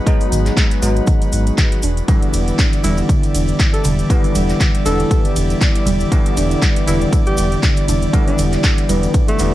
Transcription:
Already playing: analog synth pad G#3 F#4 B4
0.06 tine electric piano F#3 G#3 B3 D#4, synth arpeggio sound G#3, kick, closed hi-hat, cabasa
0.20 open hi-hat, cabasa
0.32 sub bass G#1, synth arpeggio sound D#3, open hi-hat, cabasa
0.46 clap, closed hi-hat, cabasa
0.57 synth arpeggio sound G#3, kick, clap, closed hi-hat, cabasa
0.71 closed hi-hat, cabasa
0.82 sub bass G#1, tine electric piano F#3 G#3 B3 D#4, synth arpeggio sound G#3, open hi-hat, cabasa
0.96 closed hi-hat, cabasa
1.07 synth arpeggio sound D#3, kick, closed hi-hat, cabasa
1.22 closed hi-hat, cabasa
1.32 sub bass G#1, synth arpeggio sound D#4, open hi-hat, cabasa
1.47 closed hi-hat, cabasa
1.58 synth arpeggio sound D#3, kick, clap, closed hi-hat, cabasa
1.72 closed hi-hat, cabasa
1.82 sub bass E1, analog synth pad G3 E4 D5, synth arpeggio sound D4, open hi-hat, cabasa
1.97 closed hi-hat, cabasa
2.08 tine electric piano D3 E3 G3 B3, synth arpeggio sound G3, kick, closed hi-hat, ride, cabasa
2.22 closed hi-hat, cabasa
2.33 sub bass E1, synth arpeggio sound D3, open hi-hat, ride, cabasa
2.48 closed hi-hat, cabasa
2.59 synth arpeggio sound D4, kick, clap, closed hi-hat, ride, cabasa
2.73 closed hi-hat, cabasa
2.84 sub bass E1, tine electric piano D3 E3 G3 B3, synth arpeggio sound G3, alto saxophone E4, open hi-hat, ride, muted conga, cabasa
2.97 closed hi-hat, muted conga, cabasa
3.09 synth arpeggio sound D3, kick, closed hi-hat, ride, cabasa
3.23 closed hi-hat, muted conga, cabasa
3.34 sub bass E1, synth arpeggio sound D4, open hi-hat, ride, cabasa
3.48 closed hi-hat, cabasa
3.60 synth arpeggio sound G3, kick, clap, closed hi-hat, ride, cabasa
3.73 alto saxophone A4, closed hi-hat, cabasa
3.84 sub bass E1, synth arpeggio sound D3, open hi-hat, ride, low conga, cabasa
3.99 closed hi-hat, high conga, cabasa
4.10 tine electric piano D3 E3 G3 B3, synth arpeggio sound D4, kick, closed hi-hat, ride, cabasa
4.24 open hi-hat, high conga, cabasa
4.35 sub bass E1, synth arpeggio sound G3, open hi-hat, ride, cabasa
4.49 clap, closed hi-hat, cabasa
4.60 synth arpeggio sound D3, kick, clap, closed hi-hat, ride, cabasa
4.75 closed hi-hat, cabasa
4.85 sub bass E1, tine electric piano D3 E3 G3 B3, synth arpeggio sound D4, alto saxophone A4, open hi-hat, ride, cabasa
4.99 closed hi-hat, muted conga, cabasa
5.11 synth arpeggio sound G3, kick, closed hi-hat, ride, cabasa
5.25 closed hi-hat, high conga, cabasa
5.36 sub bass E1, synth arpeggio sound D3, open hi-hat, ride, muted conga, cabasa
5.50 closed hi-hat, cabasa
5.61 synth arpeggio sound D4, kick, clap, closed hi-hat, ride, cabasa
5.75 closed hi-hat, cabasa
5.86 sub bass E1, synth arpeggio sound G3, open hi-hat, ride, low conga, cabasa
6.00 closed hi-hat, high conga, cabasa
6.11 tine electric piano D3 E3 G3 B3, synth arpeggio sound D3, kick, closed hi-hat, ride, cabasa
6.26 closed hi-hat, cabasa
6.37 sub bass E1, synth arpeggio sound D4, open hi-hat, ride, cabasa
6.51 closed hi-hat, cabasa
6.62 synth arpeggio sound G3, kick, clap, closed hi-hat, ride, cabasa
6.76 closed hi-hat, cabasa
6.87 sub bass E1, tine electric piano D3 E3 G3 B3, synth arpeggio sound D3, alto saxophone E4, open hi-hat, ride, muted conga, cabasa
7.01 closed hi-hat, muted conga, cabasa
7.13 synth arpeggio sound D4, kick, closed hi-hat, ride, cabasa
7.26 alto saxophone G4, closed hi-hat, muted conga, cabasa
7.37 sub bass E1, synth arpeggio sound G3, open hi-hat, ride, cabasa
7.52 closed hi-hat, cabasa
7.63 synth arpeggio sound D3, kick, clap, closed hi-hat, ride, cabasa
7.76 closed hi-hat, cabasa
7.88 sub bass E1, synth arpeggio sound D4, open hi-hat, ride, low conga, cabasa
8.02 closed hi-hat, high conga, cabasa
8.13 tine electric piano D3 E3 G3 B3, synth arpeggio sound G3, kick, closed hi-hat, ride, cabasa
8.27 alto saxophone D4, open hi-hat, high conga, cabasa
8.38 sub bass E1, synth arpeggio sound D3, open hi-hat, ride, cabasa
8.53 clap, closed hi-hat, cabasa
8.63 synth arpeggio sound D4, kick, clap, closed hi-hat, ride, cabasa
8.78 closed hi-hat, cabasa
8.89 sub bass E1, tine electric piano D3 E3 G3 B3, synth arpeggio sound G3, open hi-hat, ride, muted conga, cabasa
9.03 closed hi-hat, muted conga, cabasa
9.14 synth arpeggio sound D3, kick, closed hi-hat, ride, cabasa
9.28 alto saxophone A3, closed hi-hat, high conga, cabasa
9.39 sub bass E1, tine electric piano D3 E3 G3 B3, synth arpeggio sound D4, open hi-hat, ride, muted conga, cabasa

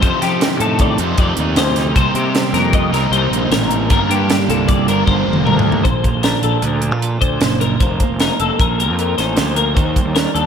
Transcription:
Already playing: clean electric guitar C4 G4
0.01 overdriven electric guitar F2 C3 D#3 A3 D#4, fingered electric bass F2, clean electric guitar F3 C5, kick, closed hi-hat
0.22 fingered electric bass F3, clean electric guitar D#4 G4, snare, closed hi-hat
0.41 clean electric guitar C4, snare, closed hi-hat
0.60 fingered electric bass A2, clean electric guitar A4, closed hi-hat
0.65 clean electric guitar D#4
0.79 clean electric guitar G4 D5, kick, closed hi-hat
0.98 fingered electric bass F2, overdriven electric guitar F2 C3 D#3 A3 D#4, clean electric guitar C5, closed hi-hat
1.03 clean electric guitar G4
1.18 overdriven electric guitar F2 C3 D#3 A3 D#4, fingered electric bass F2, clean electric guitar G4 D5, kick, closed hi-hat
1.37 fingered electric bass D#2, clean electric guitar D#4, closed hi-hat
1.56 fingered electric bass D2, clean electric guitar F3 C5, snare, closed hi-hat
1.76 clean electric guitar D#4, snare, closed hi-hat
1.95 fingered electric bass C2, overdriven electric guitar C3 G3 C4 D#4, clean electric guitar C3 G3 A#3 C5, kick, closed hi-hat
2.00 clean electric guitar D#4 A#4
2.14 fingered electric bass C3, clean electric guitar A#3 G4, closed hi-hat
2.35 clean electric guitar G3, snare, closed hi-hat
2.53 fingered electric bass F2, clean electric guitar A#3 A#4, snare, closed hi-hat
2.73 clean electric guitar D#4 D#5, kick, closed hi-hat
2.91 fingered electric bass C2, overdriven electric guitar C3 G3 C4 D#4, clean electric guitar A#4, snare, closed hi-hat
2.97 clean electric guitar A#4
3.11 fingered electric bass C2, overdriven electric guitar C3 G3 C4, clean electric guitar D#4 C5, closed hi-hat
3.15 overdriven electric guitar D#4
3.31 fingered electric bass A#1, clean electric guitar A#3, closed hi-hat
3.50 fingered electric bass A1, clean electric guitar A#2 A#4, snare, closed hi-hat
3.71 clean electric guitar A2, closed hi-hat
3.90 fingered electric bass G1, overdriven electric guitar G2 D3 G3 A#3 D4, clean electric guitar G2 A#4, kick, closed hi-hat
4.09 fingered electric bass G2, clean electric guitar A#3 G4, closed hi-hat
4.29 clean electric guitar G3, snare, closed hi-hat
4.49 fingered electric bass C2, clean electric guitar A#3 A4, closed hi-hat
4.68 clean electric guitar F4 D5, kick, closed hi-hat
4.88 fingered electric bass G1, overdriven electric guitar G2 D3 G3 A#3 D4, clean electric guitar A#4 C5, closed hi-hat
5.06 fingered electric bass G1, overdriven electric guitar G2 D3 G3 A#3 D4, clean electric guitar F4 C5, kick
5.28 fingered electric bass F1, clean electric guitar A#3
5.33 mid tom
5.45 fingered electric bass D2, clean electric guitar G2 A#4, mid tom
5.59 floor tom
5.67 clean electric guitar A#3
5.72 floor tom
5.83 fingered electric bass A#1, clean electric guitar A#2 A4 C5, kick, closed hi-hat
6.04 clean electric guitar F3, kick, closed hi-hat
6.15 fingered electric bass A#1
6.23 clean electric guitar D4 A#4, snare, closed hi-hat
6.42 fingered electric bass A#1, clean electric guitar F3 A4, closed hi-hat
6.62 fingered electric bass D2, clean electric guitar D4 A#4, closed hi-hat
6.81 clean electric guitar D4, closed hi-hat
6.91 fingered electric bass A#2, clean electric guitar F4
7.02 clean electric guitar A4, closed hi-hat
7.21 fingered electric bass D2, clean electric guitar D4 C5, kick, closed hi-hat
7.41 fingered electric bass F#1, clean electric guitar A#2 G4, snare, closed hi-hat
7.51 clean electric guitar A4
7.60 clean electric guitar F3 A#4, closed hi-hat
7.80 fingered electric bass F1, clean electric guitar F3 A#4 C5, kick, closed hi-hat
8.00 clean electric guitar A#3, kick, closed hi-hat
8.10 fingered electric bass F1
8.20 clean electric guitar D#4 A#4, snare, closed hi-hat
8.40 fingered electric bass F1, clean electric guitar A#3 A4, closed hi-hat
8.60 fingered electric bass A#1, clean electric guitar D#4 A#4, kick, closed hi-hat
8.79 clean electric guitar G4 A#4, closed hi-hat
8.90 fingered electric bass F2, clean electric guitar A#4
8.99 clean electric guitar A#4, closed hi-hat
9.18 fingered electric bass A1, clean electric guitar D#4 C5, snare, closed hi-hat
9.37 fingered electric bass D2, clean electric guitar F3 G4, snare, closed hi-hat
9.48 clean electric guitar A#4
9.56 clean electric guitar A#3 A#4, closed hi-hat
9.75 fingered electric bass D#2, clean electric guitar D#3 G4 C5, kick, closed hi-hat
9.96 clean electric guitar G3, kick, closed hi-hat
10.06 fingered electric bass D#2
10.15 clean electric guitar D4 A#4, snare, closed hi-hat
10.34 fingered electric bass D#2, clean electric guitar G3 A4, closed hi-hat

